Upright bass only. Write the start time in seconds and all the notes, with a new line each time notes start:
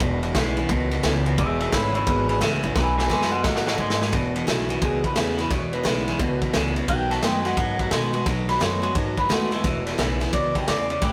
0.00 E1
0.35 B1
0.69 C#2
1.04 C#2
1.38 E1
1.73 G#1
2.07 G#1
2.41 C#2
2.64 A1
2.76 B1
3.10 F#2
3.44 A2
3.78 G#2
4.13 E1
4.47 B1
4.82 C#2
5.16 E2
5.50 E1
5.85 B1
6.19 C#2
6.54 C#2
6.88 B1
7.23 F#2
7.57 G#2
7.91 B2
8.26 B1
8.61 F#2
8.95 G#2
9.30 D#2
9.64 E1
9.99 B1
10.33 C#2
10.68 E2
11.02 A1